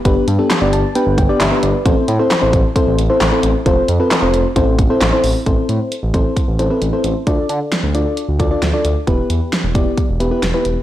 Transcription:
<<
  \new Staff \with { instrumentName = "FM electric piano" } { \time 4/4 \key a \minor \tempo 4 = 133 << { r4. a''8 g''8 g''8 e''8 d''8 | r1 | r1 | r1 |
r1 | r1 | } \\ { <b d' g' b'>8 r16 <b d' g' a'>16 r16 <b d' g' d''>8 r16 <b d' g' b'>8 r16 <b d' g' d''>16 r16 <b d' g' b'>8 r16 | <c' e' a' c''>8 r16 <c' e' a' c''>16 r16 <c' e' a' c''>8 r16 <c' e' a' c''>8 r16 <c' e' a' c''>16 r16 <c' e' a' c''>8 r16 | <c' f' a' c''>8 r16 <c' f' a' b'>16 r16 <c' f' a' c''>8 r16 <c' e' a' c''>8 r16 <c' e' a' c''>16 r16 <c' e' a' c''>8 r16 | <c' e' a' c''>4 r8 <c' e' a' c''>8. r16 <c' e' a' c''>16 <c' e' a' b'>16 r16 <c' e' a' c''>8 r16 |
<d' f' a' d''>4 r8 <d' f' a' d''>8. r16 <d' f' a' d''>16 <d' f' a' d''>16 r16 <d' f' a' d''>8 r16 | <b e' g' b'>4 r8 <b e' g' d''>8. r16 <b e' g' b'>16 <b e' g' b'>16 r16 <b e' g' b'>8 r16 | } >> }
  \new Staff \with { instrumentName = "Analog synth bass" } { \clef bass \time 4/4 \key a \minor g,,16 r16 g,16 r8 g,,16 g,,16 r8 g,,16 g,,16 r16 g,,16 r16 g,,16 r16 | a,,16 r16 a,16 r8 a,,16 a,,16 r8 a,,16 a,,16 r16 a,,16 r16 a,,16 r16 | f,,16 r16 f,16 r8 f,,16 f,,16 r16 a,,16 a,,16 a,,16 r16 a,,16 r16 a,,16 r16 | a,,16 r16 a,16 r8 a,,16 a,,16 r8 a,,16 a,,16 r16 a,,16 r16 a,,16 r16 |
d,16 r16 d16 r8 d,16 d,16 r8 d,16 d,16 r16 d,16 r16 d,16 r16 | e,,16 r16 e,16 r8 e,,16 e,,16 r8 e,,16 e,,16 r16 e,,16 r16 e,,16 r16 | }
  \new DrumStaff \with { instrumentName = "Drums" } \drummode { \time 4/4 <hh bd>8 hh8 <hc hh sn>8 hh8 hh8 <hh bd>8 <hc hh sn>8 hh8 | <hh bd>8 hh8 <hc hh sn>8 <hh bd>8 <hh bd>8 hh8 <hc hh sn>8 hh8 | <hh bd>8 hh8 <hc hh sn>8 hh8 <hh bd>8 <hh bd>8 <hc hh sn>8 hho8 | <hh bd>8 hh8 hh8 <hh bd>8 <hh bd>8 hh8 hh8 hh8 |
<hh bd>8 hh8 <hh sn>8 hh8 hh8 <hh bd>8 <hh sn>8 hh8 | <hh bd>8 hh8 <hh sn>8 <hh bd>8 <hh bd>8 hh8 <hh sn>8 hh8 | }
>>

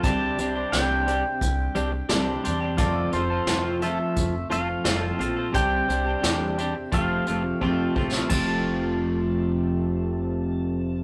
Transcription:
<<
  \new Staff \with { instrumentName = "Pedal steel guitar" } { \time 4/4 \key f \major \tempo 4 = 87 a''4 g''2~ g''8 r8 | d''8 c''4 e''4 f''4. | g''2 f''4. r8 | a''1 | }
  \new Staff \with { instrumentName = "Clean electric guitar" } { \time 4/4 \key f \major <c g c' d' g'>8 <g c' d' g'>16 <c' d' g'>16 <c g c' d' g'>8 <g c' d' g'>8. r16 <g c' d' g'>8 <c g c' d' g'>8 <g c' d' g'>16 <c' d' g'>16 | <f c' f' a'>8 <f c' f' a'>16 <c' f' a'>16 <f c' f' a'>8 <f c' f' a'>8. r16 <f c' f' a'>8 <f c' f' a'>8 <f c' f' a'>16 <c' f' a'>16 | <c g c' d' g'>8 <g c' d' g'>16 <c' d' g'>16 <c g c' d' g'>8 <g c' d' g'>8 <f, c f a c' f'>8 <f a c' f'>8 <f, c f a c' f'>8 <f a c' f'>16 <f a c' f'>16 | <f, c f a c' f'>1 | }
  \new Staff \with { instrumentName = "Steel-string acoustic guitar" } { \time 4/4 \key f \major <c g c' d' g'>8 <c' d' g'>8 <c g c' d' g'>8 <c' d' g'>8 <g c' d' g'>8 <c' d' g'>8 <c g c' d' g'>8 <c' d' g'>8 | <f, c f a c' a'>8 <f a c' a'>8 <f, c f a c' a'>8 <f a c' a'>8 <f a c' a'>8 <f a c' a'>8 <f, c f a c' a'>8 <f a c' a'>8 | <c g c' d' g'>8 <c' d' g'>8 <c g c' d' g'>8 <c' d' g'>8 <f a c' a'>8 <f a c' a'>8 <f, c f a c' a'>8 <f a c' a'>8 | <f, c f a c' a'>1 | }
  \new Staff \with { instrumentName = "Upright bass" } { \clef bass \time 4/4 \key f \major c,8 c,8 c,4 c,8 c,8 c,8 e,8 | f,,8 f,,8 f,,4 f,,8 f,,8 f,,8 bes,,8 | c,8 c,8 e,4 f,,8 f,,8 f,,8 bes,,8 | f,,1 | }
  \new DrumStaff \with { instrumentName = "Drums" } \drummode { \time 4/4 <hh bd>8 hh8 <hh sn>8 hh8 <hh bd>8 hh8 <hh sn>8 hh8 | <hh bd>8 hh8 <hh sn>8 hh8 <hh bd>8 hh8 <hh sn>8 hh8 | <hh bd>8 hh8 <hh sn>8 hh8 <hh bd>8 hh8 bd8 bd16 sn16 | <cymc bd>4 r4 r4 r4 | }
>>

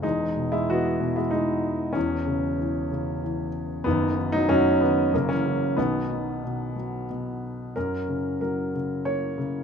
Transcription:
<<
  \new Staff \with { instrumentName = "Grand piano" } { \time 3/4 \key b \major \tempo 4 = 94 dis'8. e'16 fis'8. e'16 dis'4 | cis'2~ cis'8 r8 | b8. dis'16 cis'8 b8 ais16 cis'8. | b2 r4 |
\key fis \major ais'4 ais'4 cis''4 | }
  \new Staff \with { instrumentName = "Grand piano" } { \clef bass \time 3/4 \key b \major << { gis8. gis16 b8. gis16 gis4 | e2~ e8 r8 | dis8. fis16 fis8 r8 cis16 e8. | dis2 r4 |
\key fis \major cis'4. r4. | } \\ { <e,, e,>8 b,8 e8 b,8 e4 | <e,, e,>8 cis8 e8 cis8 e4 | <fis,, fis,>8 dis8 fis,8 dis8 <fis,, fis,>8 cis8 | <b,, b,>8 fis8 b,8 fis8 b,4 |
fis,8 cis8 fis8 cis8 ais8 cis8 | } >> }
>>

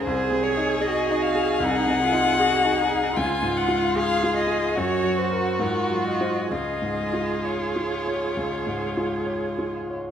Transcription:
<<
  \new Staff \with { instrumentName = "Violin" } { \time 4/4 \key des \major \tempo 4 = 74 c''8 des''8 ees''8 f''8 ges''2 | aes''8 ges''8 f''8 ees''8 des''8 c''8 bes'8 ees''8 | ees''4 des''2~ des''8 r8 | }
  \new Staff \with { instrumentName = "Cello" } { \time 4/4 \key des \major aes'4 ges'4 ees'8 f'8 ges'8 ees'8 | f'4 aes'4 ges'4 f'4 | aes'2.~ aes'8 r8 | }
  \new Staff \with { instrumentName = "Violin" } { \time 4/4 \key des \major aes'1 | f'2 ges'2 | f'2.~ f'8. r16 | }
  \new Staff \with { instrumentName = "Grand piano" } { \time 4/4 \key des \major \tuplet 3/2 { c,8 c8 ees'8 aes'8 ees'8 aes'8 c,8 c8 ees'8 aes'8 ees'8 aes'8 } | \tuplet 3/2 { des,8 aes,8 f'8 aes'8 f'8 aes'8 ges,8 ges8 <ges' bes'>8 aes,8 ges8 <f' c''>8 } | \tuplet 3/2 { des,8 aes,8 f'8 des''8 f'8 des''8 des,8 aes,8 f'8 des''8 f'8 des''8 } | }
>>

